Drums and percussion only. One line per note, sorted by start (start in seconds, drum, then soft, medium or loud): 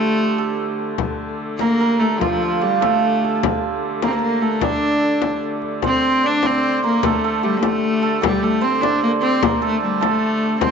0.98 frame drum medium
1.59 frame drum medium
2.01 frame drum soft
2.21 frame drum medium
2.82 frame drum medium
3.23 frame drum soft
3.43 frame drum medium
4.02 frame drum medium
4.42 frame drum soft
4.61 frame drum medium
5.22 frame drum medium
5.62 frame drum soft
5.82 frame drum medium
6.43 frame drum medium
7.03 frame drum medium
7.63 frame drum medium
8.23 frame drum medium
8.83 frame drum medium
9.43 frame drum medium
10.03 frame drum medium
10.61 frame drum medium